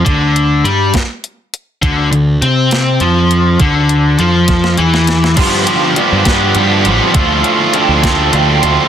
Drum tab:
CC |------------|------------|------------|x-----------|
HH |x-x-x-x-x-x-|x-x-x-x-x-x-|x-x-x-x-x-x-|x-x-x-x-x-x-|
SD |------o-----|------o-----|------oo-ooo|------o-----|
BD |o-----o-----|o-----------|o-----o-----|o-----o-----|

CC |------------|
HH |x-x-x-x-x-x-|
SD |------o-----|
BD |o-----o-----|